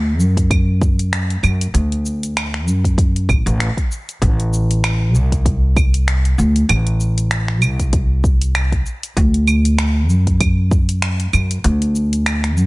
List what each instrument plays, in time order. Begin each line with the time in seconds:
Already playing: upright bass D2
0.19 upright bass F#2, shaker
0.37 kick, closed hi-hat, shaker
0.51 kick, closed hi-hat, claves, shaker
0.81 kick, shaker
0.99 closed hi-hat, shaker
1.13 finger snap, closed hi-hat, shaker
1.30 closed hi-hat
1.43 upright bass F#2, claves, shaker
1.61 closed hi-hat, shaker
1.74 upright bass D2, closed hi-hat, shaker
1.92 closed hi-hat
2.06 shaker
2.23 closed hi-hat, shaker
2.37 finger snap, closed hi-hat, claves, shaker
2.54 finger snap
2.67 upright bass F#2, shaker
2.84 kick, closed hi-hat, shaker
2.98 kick, closed hi-hat, shaker
3.16 closed hi-hat
3.29 upright bass A1, kick, claves, shaker
3.46 upright bass A1, closed hi-hat, shaker
3.60 finger snap, closed hi-hat, shaker
3.77 kick, closed hi-hat
3.92 shaker
4.09 closed hi-hat, shaker
4.22 upright bass A1, kick, closed hi-hat, shaker
4.40 closed hi-hat
4.54 shaker
4.71 closed hi-hat, shaker
4.84 finger snap, closed hi-hat, claves, shaker
5.15 upright bass C2, shaker
5.32 kick, closed hi-hat, shaker
5.46 kick, closed hi-hat, shaker
5.76 kick, claves, shaker
5.94 closed hi-hat, shaker
6.08 finger snap, closed hi-hat, shaker
6.25 closed hi-hat
6.38 upright bass D2, shaker
6.56 closed hi-hat, shaker
6.69 upright bass A1, closed hi-hat, claves, shaker
6.87 closed hi-hat
7.01 shaker
7.18 closed hi-hat, shaker
7.31 finger snap, closed hi-hat, shaker
7.48 finger snap
7.62 upright bass C2, claves, shaker
7.79 kick, closed hi-hat, shaker
7.93 kick, closed hi-hat, shaker
8.24 kick, shaker
8.42 closed hi-hat, shaker
8.55 finger snap, closed hi-hat, claves, shaker
8.72 kick, closed hi-hat
8.86 shaker
9.03 closed hi-hat, shaker
9.17 upright bass D2, kick, closed hi-hat, shaker
9.34 closed hi-hat
9.48 claves, shaker
9.65 closed hi-hat, shaker
9.79 finger snap, closed hi-hat, shaker
10.09 upright bass F#2, shaker
10.27 kick, closed hi-hat, shaker
10.40 kick, closed hi-hat, claves, shaker
10.71 kick, shaker
10.89 closed hi-hat, shaker
11.02 finger snap, closed hi-hat, shaker
11.20 closed hi-hat
11.33 upright bass F#2, claves, shaker
11.51 closed hi-hat, shaker
11.64 upright bass D2, closed hi-hat, shaker
11.82 closed hi-hat
11.96 shaker
12.13 closed hi-hat, shaker
12.26 finger snap, closed hi-hat, claves, shaker
12.44 finger snap, closed hi-hat
12.57 upright bass F#2, shaker